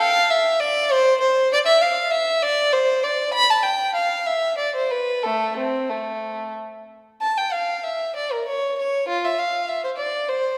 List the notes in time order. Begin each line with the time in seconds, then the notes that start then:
0.00 F5
0.30 E5
0.60 D5
0.92 C5
1.21 C5
1.53 D5
1.67 E5
1.82 F5
2.11 E5
2.43 D5
2.73 C5
3.03 D5
3.34 B5
3.51 A5
3.63 G5
3.95 F5
4.27 E5
4.58 D5
4.75 C5
4.91 B4
5.23 A3 A4
5.58 C4
5.90 A3
7.21 A5
7.38 G5
7.52 F5
7.83 E5
8.16 D5
8.32 A#4
8.48 C#5
8.78 C#5
9.08 F4
9.25 E5
9.39 F5
9.69 E5
9.84 C5
9.97 D5
10.28 C5